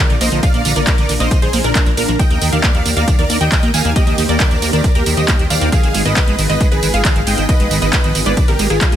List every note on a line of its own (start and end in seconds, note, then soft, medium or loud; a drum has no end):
0.00 0.15 A#4 medium
0.00 0.15 D5 loud
0.10 0.18 A#1 medium
0.10 0.15 D3 medium
0.10 0.18 D3 medium
0.10 0.18 A#3 medium
0.10 0.18 F4 medium
0.10 0.18 A#4 medium
0.10 closed hi-hat medium
0.10 tambourine soft
0.21 0.29 A#1 loud
0.21 0.36 D3 medium
0.21 0.29 A#3 loud
0.21 0.36 A#3 medium
0.21 0.36 F4 medium
0.21 0.36 A#4 medium
0.21 0.39 C5 medium
0.21 0.39 D#5 medium
0.21 open hi-hat loud
0.21 tambourine medium
0.32 0.40 A#1 medium
0.32 0.40 D3 medium
0.32 closed hi-hat medium
0.32 tambourine soft
0.43 0.51 D3 medium
0.43 0.51 A#3 medium
0.43 0.51 F4 medium
0.43 0.51 A#4 medium
0.43 0.70 D5 medium
0.43 0.70 F5 loud
0.43 kick loud
0.43 closed hi-hat medium
0.43 tambourine soft
0.54 0.62 A#1 medium
0.54 0.62 D3 medium
0.54 0.62 A#3 loud
0.54 0.62 A#3 medium
0.54 0.62 F4 medium
0.54 0.62 A#4 medium
0.54 closed hi-hat medium
0.54 tambourine soft
0.65 0.73 A#1 medium
0.65 0.73 D3 medium
0.65 0.80 D3 medium
0.65 0.81 A#3 medium
0.65 0.81 F4 medium
0.65 0.81 A#4 medium
0.65 open hi-hat loud
0.65 tambourine medium
0.76 0.85 A#1 medium
0.76 0.82 D3 medium
0.76 1.12 A#4 medium
0.76 1.12 D5 medium
0.76 1.12 D5 loud
0.76 closed hi-hat medium
0.76 tambourine soft
0.87 0.95 A#3 loud
0.87 kick loud
0.87 clap loud
0.87 closed hi-hat medium
0.87 tambourine soft
0.98 1.07 A#1 medium
0.98 1.06 D3 medium
0.98 1.06 A#3 medium
0.98 1.06 F4 medium
0.98 1.06 A#4 medium
0.98 closed hi-hat medium
0.98 tambourine soft
1.09 1.18 A#1 loud
1.09 1.15 D3 medium
1.09 1.25 D3 medium
1.09 1.25 A#3 medium
1.09 1.25 F4 medium
1.09 1.25 A#4 medium
1.09 open hi-hat loud
1.09 tambourine medium
1.20 1.29 A#1 medium
1.20 1.28 A#3 loud
1.20 1.38 C5 medium
1.20 1.38 D#5 medium
1.20 closed hi-hat medium
1.20 tambourine soft
1.31 1.39 D3 medium
1.31 kick loud
1.31 closed hi-hat medium
1.31 tambourine soft
1.42 1.51 A#1 medium
1.42 1.48 D3 medium
1.42 1.60 G#4 medium
1.42 1.60 C5 medium
1.42 closed hi-hat medium
1.42 tambourine soft
1.53 1.62 A#1 loud
1.53 1.69 D3 medium
1.53 1.59 A#3 loud
1.53 1.69 A#3 medium
1.53 1.69 F4 medium
1.53 1.69 A#4 medium
1.53 open hi-hat loud
1.53 tambourine medium
1.64 1.73 A#1 medium
1.64 1.70 D4 medium
1.64 1.91 D4 medium
1.64 1.91 A#4 loud
1.64 closed hi-hat medium
1.64 tambourine soft
1.75 1.81 C4 medium
1.75 kick loud
1.75 clap loud
1.75 closed hi-hat medium
1.75 tambourine soft
1.86 1.95 A#1 medium
1.86 1.94 D3 medium
1.86 1.90 F3 loud
1.86 1.94 A#3 medium
1.86 1.94 F4 medium
1.86 1.94 A#4 medium
1.86 closed hi-hat medium
1.86 tambourine soft
1.97 2.06 A#1 loud
1.97 2.13 D3 medium
1.97 2.03 A#3 medium
1.97 2.13 A#3 medium
1.97 2.15 D4 medium
1.97 2.13 F4 medium
1.97 2.15 A#4 medium
1.97 2.13 A#4 medium
1.97 open hi-hat loud
1.97 tambourine medium
2.08 2.17 A#1 medium
2.08 2.12 F3 medium
2.08 closed hi-hat medium
2.08 tambourine soft
2.19 2.25 D#3 medium
2.19 2.27 D#3 medium
2.19 2.27 A#3 medium
2.19 2.27 G4 medium
2.19 2.27 A#4 medium
2.19 2.46 D#5 medium
2.19 2.46 G5 loud
2.19 kick loud
2.19 closed hi-hat medium
2.19 tambourine soft
2.30 2.39 D#2 medium
2.30 2.38 D#3 medium
2.30 2.39 A#3 loud
2.30 2.38 A#3 medium
2.30 2.38 G4 medium
2.30 2.38 A#4 medium
2.30 closed hi-hat medium
2.30 tambourine soft
2.41 2.50 D#2 medium
2.41 2.50 D#3 medium
2.41 2.57 D#3 medium
2.41 2.57 A#3 medium
2.41 2.57 G4 medium
2.41 2.57 A#4 medium
2.41 open hi-hat loud
2.41 tambourine medium
2.52 2.61 D#2 medium
2.52 2.58 D#3 medium
2.52 2.89 D5 medium
2.52 2.89 F5 loud
2.52 2.89 F5 medium
2.52 closed hi-hat medium
2.52 tambourine soft
2.64 2.72 A#3 loud
2.64 kick loud
2.64 clap loud
2.64 closed hi-hat medium
2.64 tambourine soft
2.75 2.83 D#2 medium
2.75 2.82 D#3 medium
2.75 2.83 D#3 medium
2.75 2.82 A#3 medium
2.75 2.82 G4 medium
2.75 2.82 A#4 medium
2.75 closed hi-hat soft
2.75 tambourine soft
2.86 2.94 D#2 loud
2.86 2.91 D#3 medium
2.86 3.01 D#3 medium
2.86 3.01 A#3 medium
2.86 3.01 G4 loud
2.86 3.01 A#4 loud
2.86 open hi-hat loud
2.86 tambourine medium
2.97 3.05 D#2 medium
2.97 3.05 A#3 loud
2.97 3.15 D5 medium
2.97 3.15 F5 medium
2.97 closed hi-hat medium
2.97 tambourine soft
3.08 3.16 D#3 medium
3.08 kick loud
3.08 closed hi-hat medium
3.08 tambourine soft
3.19 3.27 D#2 medium
3.19 3.24 D#3 medium
3.19 3.37 A#4 medium
3.19 3.37 D5 medium
3.19 closed hi-hat soft
3.19 tambourine soft
3.30 3.38 D#2 loud
3.30 3.45 D#3 medium
3.30 3.38 A#3 loud
3.30 3.45 A#3 medium
3.30 3.45 G4 medium
3.30 3.45 A#4 medium
3.30 open hi-hat loud
3.30 tambourine medium
3.41 3.49 D#2 medium
3.41 3.49 D#3 medium
3.41 3.68 D#5 medium
3.41 3.68 G5 loud
3.41 closed hi-hat medium
3.41 tambourine soft
3.52 3.57 D#3 medium
3.52 kick loud
3.52 clap loud
3.52 closed hi-hat medium
3.52 tambourine soft
3.63 3.71 D#2 medium
3.63 3.71 D#3 medium
3.63 3.71 A#3 medium
3.63 3.71 A#3 loud
3.63 3.71 G4 medium
3.63 3.71 A#4 medium
3.63 closed hi-hat medium
3.63 tambourine soft
3.74 3.82 D#2 loud
3.74 3.89 D#3 medium
3.74 3.82 D#3 medium
3.74 3.89 A#3 medium
3.74 3.89 G4 medium
3.74 3.89 A#4 medium
3.74 3.92 F5 medium
3.74 3.92 G#5 medium
3.74 open hi-hat loud
3.74 tambourine medium
3.85 3.93 D#2 medium
3.85 3.90 D#3 medium
3.85 closed hi-hat medium
3.85 tambourine soft
3.96 4.04 D#3 medium
3.96 4.04 A#3 medium
3.96 4.04 A#3 loud
3.96 4.23 G4 medium
3.96 4.04 G4 medium
3.96 4.04 C5 medium
3.96 4.23 D#5 loud
3.96 kick loud
3.96 closed hi-hat medium
3.96 tambourine soft
4.07 4.15 D#2 medium
4.07 4.15 D#3 medium
4.07 4.15 A#3 medium
4.07 4.15 G4 medium
4.07 4.15 C5 medium
4.07 closed hi-hat medium
4.07 tambourine soft
4.18 4.26 D#2 loud
4.18 4.23 D#3 medium
4.18 4.33 D#3 medium
4.18 4.33 A#3 medium
4.18 4.33 G4 medium
4.18 4.33 C5 medium
4.18 open hi-hat loud
4.18 tambourine medium
4.29 4.37 D#2 medium
4.29 4.37 A#3 loud
4.29 4.65 A#4 medium
4.29 4.65 D5 loud
4.29 closed hi-hat medium
4.29 tambourine soft
4.40 4.48 D#3 medium
4.40 kick loud
4.40 clap loud
4.40 closed hi-hat medium
4.40 tambourine soft
4.51 4.60 D#2 medium
4.51 4.59 D#3 medium
4.51 4.57 D#3 medium
4.51 4.59 A#3 medium
4.51 4.59 G4 medium
4.51 4.59 C5 medium
4.51 closed hi-hat medium
4.51 tambourine soft
4.62 4.71 D#2 loud
4.62 4.78 D#3 medium
4.62 4.70 A#3 loud
4.62 4.78 A#3 loud
4.62 4.78 G4 medium
4.62 4.78 C5 medium
4.62 open hi-hat loud
4.62 tambourine medium
4.73 4.82 D#2 loud
4.73 4.81 D#3 medium
4.73 4.91 A#4 medium
4.73 4.91 D5 medium
4.73 closed hi-hat medium
4.73 tambourine soft
4.84 4.90 D#3 medium
4.84 kick loud
4.84 closed hi-hat medium
4.84 tambourine soft
4.95 5.04 D#2 medium
4.95 5.04 A#3 loud
4.95 5.13 G4 medium
4.95 5.13 A#4 medium
4.95 closed hi-hat medium
4.95 tambourine soft
5.06 5.15 D#2 loud
5.06 5.22 D#3 medium
5.06 5.15 D#3 medium
5.06 5.22 A#3 medium
5.06 5.22 G4 medium
5.06 5.22 C5 medium
5.06 open hi-hat loud
5.06 tambourine medium
5.17 5.26 D#2 medium
5.17 5.23 D#3 medium
5.17 5.44 G4 medium
5.17 5.44 D#5 loud
5.17 closed hi-hat medium
5.17 tambourine soft
5.28 5.37 A#3 loud
5.28 kick loud
5.28 clap loud
5.28 closed hi-hat loud
5.28 tambourine soft
5.39 5.48 D#2 medium
5.39 5.47 D#3 medium
5.39 5.48 D#3 medium
5.39 5.47 A#3 medium
5.39 5.47 G4 medium
5.39 5.47 C5 medium
5.39 closed hi-hat medium
5.39 tambourine soft
5.50 5.59 D#2 loud
5.50 5.66 D#3 medium
5.50 5.56 D#3 medium
5.50 5.66 A#3 medium
5.50 5.66 G4 loud
5.50 5.66 C5 medium
5.50 5.68 D5 medium
5.50 5.68 F5 medium
5.50 open hi-hat loud
5.50 tambourine medium
5.61 5.70 D#2 medium
5.61 5.70 A#3 loud
5.61 closed hi-hat medium
5.61 tambourine soft
5.72 5.80 D#3 medium
5.72 5.81 D#3 medium
5.72 5.80 B3 medium
5.72 5.80 F4 medium
5.72 5.99 G#4 medium
5.72 5.80 G#4 medium
5.72 5.99 F5 loud
5.72 kick loud
5.72 closed hi-hat medium
5.72 tambourine soft
5.83 5.92 G#1 medium
5.83 5.91 D#3 medium
5.83 5.89 D#3 medium
5.83 5.91 B3 medium
5.83 5.91 F4 medium
5.83 5.91 G#4 medium
5.83 closed hi-hat medium
5.83 tambourine soft
5.94 6.03 G#1 loud
5.94 6.10 D#3 medium
5.94 6.03 G#3 loud
5.94 6.10 B3 medium
5.94 6.10 F4 medium
5.94 6.10 G#4 medium
5.94 open hi-hat loud
5.94 tambourine medium
6.05 6.14 G#1 medium
6.05 6.14 D#3 medium
6.05 6.42 B4 medium
6.05 6.42 D#5 medium
6.05 6.42 D#5 loud
6.05 closed hi-hat medium
6.05 tambourine soft
6.17 kick loud
6.17 clap loud
6.17 closed hi-hat medium
6.17 tambourine soft
6.28 6.36 G#1 medium
6.28 6.35 D#3 medium
6.28 6.36 G#3 loud
6.28 6.35 B3 medium
6.28 6.35 F4 medium
6.28 6.35 G#4 medium
6.28 closed hi-hat medium
6.28 tambourine soft
6.39 6.47 G#1 loud
6.39 6.54 D#3 medium
6.39 6.47 D#3 medium
6.39 6.54 B3 loud
6.39 6.54 F4 medium
6.39 6.54 G#4 loud
6.39 open hi-hat loud
6.39 tambourine medium
6.50 6.58 G#1 medium
6.50 6.55 D#3 medium
6.50 6.68 B4 medium
6.50 6.68 D#5 medium
6.50 closed hi-hat medium
6.50 tambourine soft
6.61 6.69 G#3 loud
6.61 kick loud
6.61 closed hi-hat medium
6.61 tambourine soft
6.72 6.80 G#1 medium
6.72 6.80 D#3 medium
6.72 6.90 G#4 medium
6.72 6.90 B4 medium
6.72 closed hi-hat medium
6.72 tambourine soft
6.83 6.91 G#1 loud
6.83 6.98 D#3 medium
6.83 6.88 D#3 medium
6.83 6.98 B3 medium
6.83 6.98 F4 medium
6.83 6.98 G#4 medium
6.83 open hi-hat loud
6.83 tambourine medium
6.94 7.02 G#1 medium
6.94 7.02 G#3 loud
6.94 7.21 G#4 medium
6.94 7.21 F5 medium
6.94 7.21 F5 loud
6.94 closed hi-hat medium
6.94 tambourine soft
7.05 7.13 D#3 medium
7.05 kick loud
7.05 clap loud
7.05 closed hi-hat loud
7.05 tambourine soft
7.16 7.24 G#1 medium
7.16 7.23 D#3 medium
7.16 7.21 D#3 medium
7.16 7.23 B3 medium
7.16 7.23 F4 medium
7.16 7.23 G#4 medium
7.16 closed hi-hat medium
7.16 tambourine soft
7.27 7.35 G#1 loud
7.27 7.42 D#3 medium
7.27 7.35 G#3 loud
7.27 7.42 B3 medium
7.27 7.42 F4 medium
7.27 7.42 G#4 medium
7.27 7.45 D#5 medium
7.27 7.45 G5 medium
7.27 open hi-hat loud
7.27 tambourine medium
7.38 7.46 G#1 loud
7.38 7.46 D#3 medium
7.38 closed hi-hat medium
7.38 tambourine soft
7.49 7.54 D#3 medium
7.49 7.57 D#3 medium
7.49 7.57 B3 medium
7.49 7.57 F4 medium
7.49 7.57 G#4 medium
7.49 7.76 B4 medium
7.49 7.76 D#5 loud
7.49 kick loud
7.49 closed hi-hat loud
7.49 tambourine soft
7.60 7.68 G#1 medium
7.60 7.68 D#3 medium
7.60 7.68 G#3 loud
7.60 7.68 B3 medium
7.60 7.68 F4 medium
7.60 7.68 G#4 medium
7.60 closed hi-hat medium
7.60 tambourine soft
7.71 7.79 G#1 loud
7.71 7.86 D#3 medium
7.71 7.79 D#3 medium
7.71 7.86 B3 medium
7.71 7.86 F4 medium
7.71 7.86 G#4 medium
7.71 open hi-hat loud
7.71 tambourine medium
7.82 7.90 G#1 loud
7.82 7.87 D#3 medium
7.82 8.18 B4 medium
7.82 8.18 D#5 loud
7.82 8.18 D#5 medium
7.82 closed hi-hat medium
7.82 tambourine soft
7.93 8.01 G#3 loud
7.93 kick loud
7.93 clap loud
7.93 closed hi-hat loud
7.93 tambourine soft
8.04 8.12 G#1 medium
8.04 8.12 D#3 medium
8.04 8.12 B3 medium
8.04 8.12 F4 medium
8.04 8.12 G#4 medium
8.04 closed hi-hat medium
8.04 tambourine soft
8.15 8.24 G#1 loud
8.15 8.30 D#3 medium
8.15 8.21 D#3 medium
8.15 8.30 B3 medium
8.15 8.30 F4 loud
8.15 8.30 G#4 medium
8.15 open hi-hat loud
8.15 tambourine medium
8.26 8.35 G#1 medium
8.26 8.34 G#3 loud
8.26 8.44 B4 medium
8.26 8.44 D5 medium
8.26 closed hi-hat medium
8.26 tambourine soft
8.37 8.45 D#3 medium
8.37 kick loud
8.37 closed hi-hat loud
8.37 tambourine soft
8.48 8.57 G#1 medium
8.48 8.54 D#3 medium
8.48 8.66 G4 medium
8.48 8.66 A#4 medium
8.48 closed hi-hat medium
8.48 tambourine soft
8.59 8.68 G#1 loud
8.59 8.75 D#3 medium
8.59 8.67 G#3 loud
8.59 8.75 B3 medium
8.59 8.75 F4 medium
8.59 8.75 G#4 medium
8.59 open hi-hat loud
8.59 tambourine medium
8.70 8.79 G#1 medium
8.70 8.78 D#3 medium
8.70 8.96 F4 medium
8.70 8.96 G#4 loud
8.70 closed hi-hat medium
8.70 tambourine soft
8.81 kick loud
8.81 clap loud
8.81 closed hi-hat loud
8.81 tambourine soft
8.92 8.96 G#1 medium
8.92 8.96 D#3 medium
8.92 8.96 G#3 loud
8.92 8.96 B3 medium
8.92 8.96 F4 medium
8.92 closed hi-hat medium
8.92 tambourine soft